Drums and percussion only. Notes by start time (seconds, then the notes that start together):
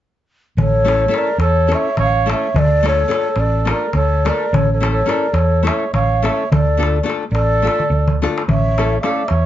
0.58 darbuka dum
0.88 darbuka tek
1.01 darbuka tek
1.14 darbuka tek
1.27 darbuka tek
1.40 darbuka tek
1.72 darbuka tek
1.85 darbuka tek
1.97 darbuka tek, darbuka dum
2.30 darbuka tek
2.43 darbuka tek
2.56 darbuka dum
2.86 darbuka tek
2.99 darbuka tek
3.11 darbuka tek
3.23 darbuka tek
3.36 darbuka tek
3.67 darbuka tek
3.80 darbuka tek
3.93 darbuka tek, darbuka dum
4.26 darbuka tek
4.40 darbuka tek
4.54 darbuka dum
4.83 darbuka tek
4.97 darbuka tek
5.09 darbuka tek
5.24 darbuka tek
5.34 darbuka tek
5.67 darbuka tek
5.80 darbuka tek
5.94 darbuka tek, darbuka dum
6.25 darbuka tek
6.40 darbuka tek
6.52 darbuka dum
6.67 darbuka tek
6.83 darbuka tek
6.96 darbuka tek
7.10 darbuka tek
7.23 darbuka tek
7.35 darbuka tek
7.52 darbuka tek
7.67 darbuka tek
7.80 darbuka dum
7.92 darbuka dum
8.08 darbuka dum
8.24 darbuka tek
8.38 darbuka tek
8.49 darbuka dum
8.78 darbuka tek
8.90 darbuka tek
9.03 darbuka tek
9.16 darbuka tek
9.28 darbuka tek